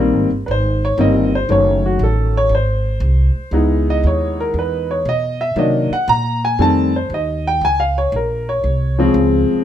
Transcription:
Already playing: A#1 D#3 G3 A#3 C4
0.13 G#1
0.30 G1
0.46 G#1 B4
0.51 C5
0.85 C#5
0.98 G1 D#3 G3 A#3 C4 D#5
1.35 C5
1.49 F#1 D#3 F#3 A3 C#4 C#5
1.86 F#4
1.99 A1
2.04 A4
2.37 C#5
2.49 G#1
2.55 C5
3.00 C2
3.36 muted upright bass stroke
3.51 C#2 G#3 B3 D#4 E4
3.90 D#5
4.04 D#2 C#5
4.40 A#4
4.54 E2
4.59 B4
4.91 C#5
5.05 B2 D#5
5.41 E5
5.56 C3 D#3 F#3 A#3 D4 D#5
5.90 F#5, muted upright bass stroke
6.08 A#2 A#5
6.45 G#5
6.59 F2 D#3 G3 A3 C4 A5
6.96 C5
7.10 D#2
7.14 D#5
7.47 G5
7.61 C#2 G#5
7.80 F5
7.98 C#5
8.12 A#1 A#4
8.49 C#5
8.64 C2
8.98 C#3 F3 G#3 C4
9.14 C#2
9.50 muted upright bass stroke

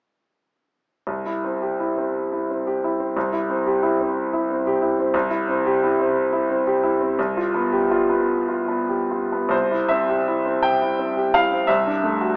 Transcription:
1.07 C2
1.26 E4
1.44 C4
1.62 G4
1.80 E4
1.98 C4
2.33 E4
2.51 C4
2.67 G4
2.84 E4
3.00 C4
3.17 C2
3.33 E4
3.49 C4
3.66 G4
3.83 E4
4.01 C4
4.33 E4
4.51 C4
4.67 G4
4.82 E4
4.99 C4
5.14 C2
5.30 E4
5.48 C4
5.66 G4
5.83 E4
6.00 C4
6.33 E4
6.50 C4
6.67 G4
6.83 E4
7.01 C4
7.19 C2
7.37 F4
7.54 B3
7.72 G4
7.91 F4
8.10 B3
8.49 F4
8.68 B3
8.89 G4
9.11 F4
9.32 B3
9.49 C2 C5
9.71 E4
9.88 C4 E5
10.09 G4
10.28 E4
10.46 C4
10.63 G5
10.82 E4
10.99 C4
11.17 G4
11.34 E4 F5
11.51 C4
11.67 C2 E5
11.86 D4
12.04 A3
12.21 F#4

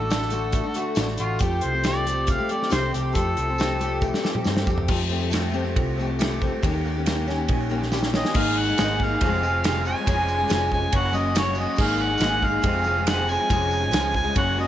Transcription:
Already playing: A1 D3 A3 F#4 A4
0.00 A3 D4 F#4
0.10 D3 A3 D4 F#4, snare, closed hi-hat, tambourine
0.22 snare
0.30 D3 A3 D4 F#4, closed hi-hat, tambourine
0.52 A3, kick, closed hi-hat, tambourine
0.63 A3 D4 F#4
0.74 D3 A3 D4 F#4, closed hi-hat, tambourine
0.95 A1 D3 A3 D4 F#4, snare, closed hi-hat, tambourine
1.08 A3 D4 F#4, snare
1.17 A1 D3 A3 D4 F4 F#4, closed hi-hat, tambourine
1.39 F2 F3 A3 C4 G4, kick, closed hi-hat
1.61 C2 F3 C5, closed hi-hat
1.73 A3 C4 G4
1.83 F3 A3 C4 G4, snare, closed hi-hat, tambourine
1.88 D5
2.05 F3 A3 C4 G4, closed hi-hat, tambourine
2.27 A3, kick, closed hi-hat, tambourine
2.31 F5
2.38 A3 C4 G4
2.49 F3 A3 C4 G4 D5, closed hi-hat
2.62 snare
2.69 C2 F3 A3 C4 G4 C5, snare, closed hi-hat, tambourine
2.80 A3 C4 G4
2.91 F3 A3 C4 G4, closed hi-hat, tambourine
2.95 C2
3.13 F2 F3 A3 C4 G4 A4, kick, closed hi-hat, tambourine
3.37 C2 F3, closed hi-hat, tambourine
3.48 A3 C4 G4
3.58 F3 A3 C4 G4, snare, closed hi-hat, tambourine
3.79 F3 A3 C4 G4, closed hi-hat
4.01 A3, kick, tambourine
4.13 A3 C4 G4, snare
4.23 F3 A3 C4 G4, snare, tambourine
4.35 A3 C4 G4, mid tom
4.44 G2 F3 C4, snare, tambourine
4.49 A3 G4
4.57 C4 G4, snare
4.61 A3
4.67 F2 F3 A3 C4 G4, kick, tambourine
4.78 floor tom
4.88 F2 F3 A3 C4 G4, kick, crash
4.99 A3 C4 G4
5.09 F3 A3 C4 G4
5.19 A3 C4 G4
5.30 F3 A3 C4 G4, snare, ride bell, tambourine
5.52 F3 A3 C4 G4
5.64 A3 C4 G4
5.76 C2 F3, kick, ride bell
5.98 F3 A3 C4 G4
6.07 A3 C4 G4
6.19 F3 A3 C4 G4, snare, ride bell, tambourine
6.41 F3 A3 C4 G4, kick
6.52 A3 C4 G4
6.62 D#2 D#3 A#3 C#4 G4, kick, ride bell
6.73 A#3 C#4 G4
6.85 D#3 A#3 C#4 G4
6.97 A#3 C#4 G4
7.06 D#3 A#3 C#4 G4, snare, ride bell, tambourine
7.28 D#3 A#3 C#4 G4, snare
7.38 A#3 C#4 G4
7.48 A#1 D#3, kick, ride bell
7.69 D#3 A#3 C#4 G4
7.81 A#3 C#4 G4, snare
7.92 D#3 A#3 C#4 G4, snare, tambourine
8.03 snare
8.12 D#3 A#3 C#4 G4 D#5, snare
8.25 snare
8.34 G#1 G#3 A#3 D#4 G#4 F5, kick, crash, tambourine
8.58 F#5
8.67 A#3 D#4 G#4
8.78 G#1 G#3 A#3 D#4 G#4, snare, ride bell, tambourine
9.00 G#3 A#3 D#4 F5, kick
9.04 G#4
9.21 F1 F2 C3 F3 G#3, kick, ride bell, tambourine
9.25 C3 F3 G#3 C4 G#4
9.42 F3 G#3 C4 G#4, tambourine
9.47 G#4
9.64 F2 C3 F3, snare, ride bell, tambourine
9.68 G#3 C4 G#4
9.85 F3 G#3 C4 G#4 G#5, tambourine
9.97 F3 G#3 C4 G#4
10.06 F1 F3 G#3 C#4 G#4, kick, ride bell, tambourine
10.28 tambourine
10.38 G#3 C#4 G#4
10.48 F1 F3 G#3 C#4 G#4, snare, ride bell, tambourine
10.70 F3 G#3 C#4 G#4 G#5, kick
10.82 G#3 C#4 G#4
10.92 F#1 F#2 C#3 F#3 A#3 C#4 F#4 F#5, kick, ride bell, tambourine
11.12 F#3 A#3 C#4 F#4 D#5, tambourine
11.16 F#3
11.35 F#2 C#3 F#3 A#3 C#4 F#4 C#5, snare, ride bell, tambourine
11.55 F#3 A#3 F#4, tambourine
11.60 C#4 F#4 D#5
11.68 F#3 A#3 C#4 F#4
11.76 G#1 G#3 A#3 D#4, kick, tambourine, crash
11.81 G#4 F5
11.98 tambourine
12.02 F#5
12.10 A#3 D#4 G#4
12.18 G#1 G#3, snare, ride bell, tambourine
12.22 A#3 D#4 G#4
12.41 G#3 A#3 D#4 G#4 F5, kick
12.51 A#3 D#4 G#4
12.62 F1 F2 C3 F3 G#3 C4 G#4, kick, ride bell, tambourine
12.84 F3 G#3 C4, tambourine
12.88 G#4
12.97 F3 G#3 C4 G#4
13.07 F2 C3 F3 G#3 C4 G#4 F#5, snare, ride bell, tambourine
13.29 F3 G#3 C4 G#4 G#5, tambourine
13.39 F3 G#3 C4 G#4
13.49 F1 F3 G#3 C#4 G#4, kick, ride bell, tambourine
13.71 tambourine
13.81 G#3 C#4 G#4
13.91 C#2 F3 G#3 C#4 G#4, snare, ride bell, tambourine
14.14 F3 G#3 C#4 G#4 G#5, kick, tambourine
14.24 G#3 C#4 G#4
14.33 F#1 F#2 C#3 F#3 A#3 C#4 F#4, kick, ride bell, tambourine
14.38 F#5
14.57 F#3 A#3 C#4 F#4 D#5

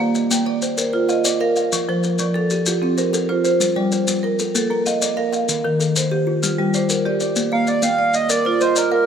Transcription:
Already playing: A#3 D5
0.00 A#3 F5
0.15 D#5, maracas
0.31 A#3 G5, maracas
0.46 D5
0.62 C5, maracas
0.77 A#4 C5, maracas
0.93 F4 A#4
1.09 D#5 F5, maracas
1.25 D5, maracas
1.40 A#4 F5
1.56 F5, maracas
1.72 F3, maracas
1.89 F3 C5
2.03 A#4, maracas
2.19 F3 D5, maracas
2.34 A4
2.50 G4, maracas
2.66 F4 G4, maracas
2.82 C4 F4
2.98 A#4 C5, maracas
3.13 A4, maracas
3.29 F4 C5
3.44 C5, maracas
3.60 G3, maracas
3.76 G3 D5
3.92 C5, maracas
4.07 G3, maracas
4.23 A#4
4.39 A4, maracas
4.55 A#3 A4, maracas
4.70 A#3 A#4
4.86 D#5 F5, maracas
5.02 D5, maracas
5.17 A#4 F5
5.33 F5, maracas
5.49 D#3, maracas
5.64 D#3 A#4
5.80 A4, maracas
5.96 D#3 C5, maracas
6.11 G4
6.27 F4
6.43 G3 F4, maracas
6.58 G3 G4
6.74 C5 D5, maracas
6.89 A#4, maracas
7.05 G4 D5
7.20 D5, maracas
7.36 A#3, maracas
7.52 A#3 D#5 F5
7.67 D5 D#5, maracas
7.82 A#3 F5 G5, maracas
7.99 D5
8.14 D#5, maracas
8.29 A#4 D5, maracas
8.45 F4 C5
8.61 C5 D#5, maracas
8.76 A#4 D5, maracas
8.92 A#4 F5

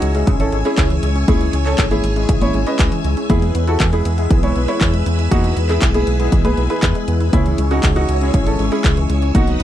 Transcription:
Already playing: G#3 C#4 D#4 E4 F#4 G#4 C#5 G#5 E6
0.02 C#2 G#3, closed hi-hat
0.15 G#3 C#4 E4 G#4, closed hi-hat
0.27 G#1 C#3, kick, closed hi-hat
0.40 E3 C#4 A4, closed hi-hat
0.52 G#1 G#3 C#4 E4 G#4, closed hi-hat
0.65 C#4 E4 G#4, closed hi-hat
0.78 C#2 C#3, kick, clap, closed hi-hat
0.90 E3, closed hi-hat
1.03 C#2 G#3, closed hi-hat
1.15 C#4, closed hi-hat
1.28 C#2 C#3 G#3 C#4 E4 G#4, kick, closed hi-hat, high conga
1.41 E3, closed hi-hat
1.53 C#2 G#3, closed hi-hat
1.66 C#4 A4, clap, closed hi-hat
1.78 G#1 C#3, kick, clap, closed hi-hat
1.91 E3 E4 G#4, closed hi-hat, high conga
2.04 G#1 G#3, closed hi-hat
2.16 G#3 C#4 E4 G#4, closed hi-hat
2.29 G#1 C#3, kick, closed hi-hat
2.41 E3 E4 C#5, closed hi-hat, high conga
2.54 G#1 G#3 C#4 E4 G#4, closed hi-hat
2.67 C#4 B4 D#5, closed hi-hat
2.79 C#2 C#3, kick, clap, closed hi-hat
2.92 E3, closed hi-hat
3.05 C#2 G#3, closed hi-hat
3.17 C#4, closed hi-hat
3.30 E2 E3 G#3 B3 E4 G#4 B4 E6, kick, closed hi-hat, high conga
3.42 G#3, closed hi-hat
3.55 E2 B3, closed hi-hat
3.67 E4 F#4 A4, closed hi-hat
3.80 E2 E3, kick, clap, closed hi-hat
3.93 G#3 E4 G#4, closed hi-hat
4.05 E2 B3, closed hi-hat
4.18 G#3 B3 E4 G#4, closed hi-hat
4.30 B1 E3, kick, closed hi-hat
4.43 G#3 E4 C#5, closed hi-hat
4.56 B1 G#3 B3 E4 G#4, closed hi-hat
4.68 E4 C#5, closed hi-hat
4.81 E2 E3, kick, clap, closed hi-hat
4.94 G#3, closed hi-hat
5.06 E2 B3, closed hi-hat
5.19 E4, closed hi-hat
5.31 E2 E3 G#3 B3 D#4 E4 F#4 G#4, kick, closed hi-hat, high conga
5.44 G#3, closed hi-hat
5.57 E2 B3, closed hi-hat
5.69 E4 G#4, clap, closed hi-hat
5.82 B1 E3, kick, clap, closed hi-hat
5.94 G#3 E4 G#4, closed hi-hat, high conga
6.07 B1 B3, closed hi-hat
6.20 G#3 B3 E4 G#4, closed hi-hat
6.32 B1 E3, kick, closed hi-hat
6.45 G#3 G#4 B4, closed hi-hat, high conga
6.57 B1 G#3 B3 E4 G#4, closed hi-hat
6.70 E4 G#4 B4, closed hi-hat
6.83 E2 E3, kick, clap, closed hi-hat
6.95 G#3, closed hi-hat
7.08 E2 B3, closed hi-hat
7.20 E4, closed hi-hat
7.33 C#2 C#3 G#3 C#4 E4 G#4 C#5 G#5 E6, kick, closed hi-hat, high conga
7.46 E3, closed hi-hat
7.58 C#2 G#3, closed hi-hat
7.71 C#4 D#4 F#4, closed hi-hat
7.83 C#2 C#3, kick, clap, closed hi-hat
7.96 E3 D#4 F#4, closed hi-hat
8.09 C#2 G#3, closed hi-hat
8.21 G#3 C#4 E4 G#4, closed hi-hat
8.34 G#1 C#3, kick, closed hi-hat
8.47 E3 C#4 A4, closed hi-hat
8.59 G#1 G#3 C#4 E4 G#4, closed hi-hat
8.72 C#4 E4 G#4, closed hi-hat
8.84 C#2 C#3, kick, clap, closed hi-hat
8.97 E3, closed hi-hat
9.10 C#2 G#3, closed hi-hat
9.22 C#4, closed hi-hat
9.35 B1 D#3 F#3 B3 D#4 F#4 B4 D#5 F#5 D#6, kick, closed hi-hat, high conga
9.47 F#3, closed hi-hat
9.60 B1, closed hi-hat

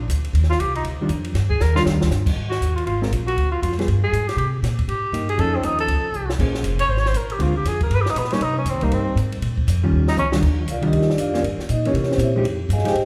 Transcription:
0.08 D2, hi-hat pedal, ride
0.24 ride
0.33 D#2, ride
0.44 snare
0.50 F4, snare
0.58 C2 G4, hi-hat pedal, ride
0.75 D#4, ride
0.83 D2, ride
1.01 D#3 G3 D4 F4
1.09 F2, hi-hat pedal, ride
1.24 ride
1.34 G2, snare, ride
1.50 G#4, kick
1.60 D#2 A#4, snare, hi-hat pedal
1.75 D#3 G3 D4 F4, snare
1.85 F2, snare
1.94 D#2
2.01 D2, snare
2.11 G2, snare, hi-hat pedal
2.26 kick, crash
2.36 G#2
2.50 F#4, snare
2.61 D#2, hi-hat pedal, ride
2.76 F4, ride
2.86 G#1 F4, ride
3.02 G#3 C4 F4 A#4, snare
3.11 A#1, hi-hat pedal, ride
3.27 F#4, ride
3.37 D2, ride
3.52 F4
3.62 F2 F4, hi-hat pedal, ride
3.72 snare
3.78 G3 B3 F4 G#4, snare, ride
3.88 G2, ride
4.04 G#4
4.12 G#2, hi-hat pedal, ride
4.28 G4, snare, ride
4.37 C3 G4, ride
4.62 A#2, snare, hi-hat pedal, ride
4.79 kick, ride
4.88 G#2 G4, ride
5.12 G2 A#3 D#4 G4, hi-hat pedal, ride
5.29 G#4, ride
5.38 F2 F3 C#4 D#4 A4, ride
5.56 C4
5.63 D#2 D#4, hi-hat pedal, ride
5.79 A4, ride
5.87 C#2, ride
6.03 muted upright bass stroke
6.12 C2, hi-hat pedal
6.30 snare
6.39 A#1 A#3 C#4 G#4 C5, kick, crash
6.55 snare
6.63 F1, hi-hat pedal, ride
6.79 C#5, ride
6.87 G#1 C5
6.97 C#5, snare
7.06 C5, snare
7.13 A#1 A#4, hi-hat pedal, ride
7.30 G4, ride
7.39 D2 D3 G#3 C4 F4, ride
7.57 G4
7.65 F2 G#4, snare, hi-hat pedal, ride
7.81 A#4, kick, ride
7.90 G2, ride
7.95 B4
8.02 G4
8.06 snare
8.10 D#4
8.15 A#2 B3, hi-hat pedal, ride
8.25 snare
8.30 G3 A#3 C#4 D#4, snare, ride
8.41 C3 D#4, ride
8.58 C#4
8.65 F2, hi-hat pedal, ride
8.70 C4
8.74 D#2
8.81 C2 G3 A#3 D#4, ride
8.91 G2 C4, ride
9.15 G#2, hi-hat pedal, ride
9.32 ride
9.41 A#2, ride
9.58 kick
9.67 F2, hi-hat pedal, ride
9.83 D#3 G3 C#4 F4
9.92 D#2
10.08 D#4, snare
10.16 C#2 C#4, hi-hat pedal, mid tom
10.32 D#3 G3 D4 F4, snare
10.42 D#2, kick, crash
10.67 C2 F5, hi-hat pedal, ride
10.71 F4 A#4 D5
10.81 D#3 G3 D4 F4, ride
10.87 D#4 G4 A#4 D#5
10.92 D2, ride
11.02 snare
11.10 D4 G4 A#4 D5, snare
11.17 F2 D5 F5, hi-hat pedal, ride
11.21 F4 A#4
11.34 F3 A#3 C#4, snare
11.43 G2, ride
11.58 muted upright bass stroke, snare
11.69 A#2 D#4 D#5, hi-hat pedal, ride
11.85 E3 A#3 C#4 G4 A#4 C#5, ride
11.94 C3, ride
12.04 snare
12.11 C4 E4 G4 C5, snare
12.18 A#2, hi-hat pedal, ride
12.23 E4 C5 C#5 E5
12.36 F3 G#3 D#4 G4
12.44 F2, ride
12.69 G2 F5, hi-hat pedal, ride
12.73 G#4 D#5 G#5
12.79 snare
12.84 F3 G#3 D#4 G4, snare, ride
12.89 G4 C5 D#5 G5
12.95 G#2, ride

